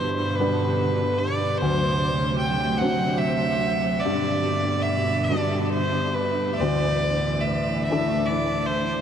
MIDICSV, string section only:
0, 0, Header, 1, 2, 480
1, 0, Start_track
1, 0, Tempo, 806452
1, 959, Time_signature, 6, 3, 24, 8
1, 2402, Tempo, 857143
1, 4322, Tempo, 832178
1, 5215, End_track
2, 0, Start_track
2, 0, Title_t, "String section"
2, 0, Program_c, 0, 48
2, 0, Note_on_c, 0, 43, 64
2, 0, Note_on_c, 0, 47, 80
2, 0, Note_on_c, 0, 50, 61
2, 941, Note_off_c, 0, 47, 0
2, 942, Note_off_c, 0, 43, 0
2, 942, Note_off_c, 0, 50, 0
2, 972, Note_on_c, 0, 54, 82
2, 975, Note_on_c, 0, 38, 72
2, 976, Note_on_c, 0, 48, 67
2, 2393, Note_off_c, 0, 54, 0
2, 2394, Note_off_c, 0, 38, 0
2, 2395, Note_off_c, 0, 48, 0
2, 2404, Note_on_c, 0, 47, 75
2, 2405, Note_on_c, 0, 43, 72
2, 2406, Note_on_c, 0, 50, 67
2, 3822, Note_off_c, 0, 47, 0
2, 3823, Note_off_c, 0, 43, 0
2, 3824, Note_off_c, 0, 50, 0
2, 3843, Note_on_c, 0, 38, 64
2, 3845, Note_on_c, 0, 45, 58
2, 3845, Note_on_c, 0, 52, 71
2, 5215, Note_off_c, 0, 38, 0
2, 5215, Note_off_c, 0, 45, 0
2, 5215, Note_off_c, 0, 52, 0
2, 5215, End_track
0, 0, End_of_file